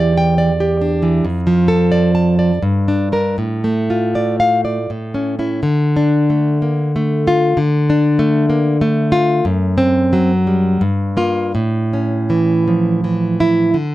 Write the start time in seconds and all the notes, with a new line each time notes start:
Already playing: E2 E3 G4 D5
0.18 G5
0.38 D5
0.60 G4
0.81 D4
1.03 E3
1.25 F2
1.47 F3
1.68 A4
1.92 D5
2.15 A5
2.39 D5
2.63 G2
2.88 D4
3.12 D4 A#4
3.38 A2
3.64 A3
3.90 F4
4.15 D5
4.40 F5
4.65 D5
4.90 A2
5.14 C#4
5.39 C#4 E4
5.63 D3
5.96 D4
6.30 A3
6.62 A#3
6.96 A3
7.28 F4
7.57 D3
7.90 D4
8.19 A3
8.50 A#3
8.81 A3
9.12 F4
9.45 F#2
9.78 C4
10.13 F#3
10.47 G3
10.81 G2
11.17 A#3 F4
11.55 A2
11.93 C#4
12.30 E3
12.68 F3
13.04 E3
13.40 E4
13.74 D3